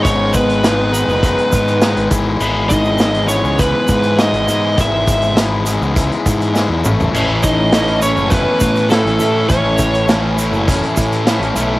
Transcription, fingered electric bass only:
0, 0, Header, 1, 2, 480
1, 0, Start_track
1, 0, Tempo, 589971
1, 38, Time_signature, 4, 2, 24, 8
1, 9596, End_track
2, 0, Start_track
2, 0, Title_t, "Fingered electric bass"
2, 0, Program_c, 0, 33
2, 39, Note_on_c, 0, 32, 86
2, 850, Note_off_c, 0, 32, 0
2, 877, Note_on_c, 0, 30, 89
2, 1106, Note_off_c, 0, 30, 0
2, 1242, Note_on_c, 0, 44, 92
2, 1582, Note_off_c, 0, 44, 0
2, 1597, Note_on_c, 0, 32, 90
2, 1714, Note_off_c, 0, 32, 0
2, 1720, Note_on_c, 0, 32, 84
2, 1949, Note_off_c, 0, 32, 0
2, 1954, Note_on_c, 0, 32, 93
2, 2769, Note_off_c, 0, 32, 0
2, 2798, Note_on_c, 0, 37, 89
2, 3029, Note_off_c, 0, 37, 0
2, 3163, Note_on_c, 0, 44, 91
2, 3505, Note_off_c, 0, 44, 0
2, 3523, Note_on_c, 0, 32, 96
2, 3636, Note_off_c, 0, 32, 0
2, 3641, Note_on_c, 0, 44, 85
2, 3871, Note_off_c, 0, 44, 0
2, 3887, Note_on_c, 0, 32, 95
2, 4695, Note_off_c, 0, 32, 0
2, 4730, Note_on_c, 0, 37, 84
2, 4955, Note_off_c, 0, 37, 0
2, 5093, Note_on_c, 0, 44, 92
2, 5430, Note_off_c, 0, 44, 0
2, 5443, Note_on_c, 0, 40, 94
2, 5559, Note_off_c, 0, 40, 0
2, 5568, Note_on_c, 0, 33, 90
2, 5794, Note_off_c, 0, 33, 0
2, 5806, Note_on_c, 0, 33, 84
2, 6614, Note_off_c, 0, 33, 0
2, 6642, Note_on_c, 0, 30, 91
2, 6870, Note_off_c, 0, 30, 0
2, 7006, Note_on_c, 0, 45, 91
2, 7345, Note_off_c, 0, 45, 0
2, 7363, Note_on_c, 0, 33, 93
2, 7472, Note_off_c, 0, 33, 0
2, 7477, Note_on_c, 0, 45, 85
2, 7707, Note_off_c, 0, 45, 0
2, 7727, Note_on_c, 0, 33, 87
2, 8532, Note_off_c, 0, 33, 0
2, 8554, Note_on_c, 0, 30, 83
2, 8784, Note_off_c, 0, 30, 0
2, 8922, Note_on_c, 0, 45, 100
2, 9261, Note_off_c, 0, 45, 0
2, 9272, Note_on_c, 0, 33, 95
2, 9390, Note_off_c, 0, 33, 0
2, 9401, Note_on_c, 0, 35, 83
2, 9596, Note_off_c, 0, 35, 0
2, 9596, End_track
0, 0, End_of_file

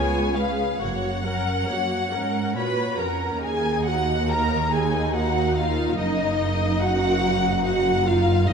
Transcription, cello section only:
0, 0, Header, 1, 2, 480
1, 0, Start_track
1, 0, Key_signature, 6, "major"
1, 0, Tempo, 870827
1, 446, Time_signature, 3, 2, 24, 8
1, 1895, Key_signature, -6, "minor"
1, 2845, Tempo, 831025
1, 4791, End_track
2, 0, Start_track
2, 0, Title_t, "Cello section"
2, 0, Program_c, 0, 48
2, 0, Note_on_c, 0, 37, 47
2, 388, Note_off_c, 0, 37, 0
2, 443, Note_on_c, 0, 42, 47
2, 875, Note_off_c, 0, 42, 0
2, 930, Note_on_c, 0, 42, 40
2, 1154, Note_off_c, 0, 42, 0
2, 1171, Note_on_c, 0, 44, 42
2, 1405, Note_on_c, 0, 46, 37
2, 1410, Note_off_c, 0, 44, 0
2, 1650, Note_off_c, 0, 46, 0
2, 1651, Note_on_c, 0, 41, 34
2, 1889, Note_off_c, 0, 41, 0
2, 1892, Note_on_c, 0, 39, 52
2, 3299, Note_off_c, 0, 39, 0
2, 3319, Note_on_c, 0, 42, 54
2, 4762, Note_on_c, 0, 46, 55
2, 4763, Note_off_c, 0, 42, 0
2, 4791, Note_off_c, 0, 46, 0
2, 4791, End_track
0, 0, End_of_file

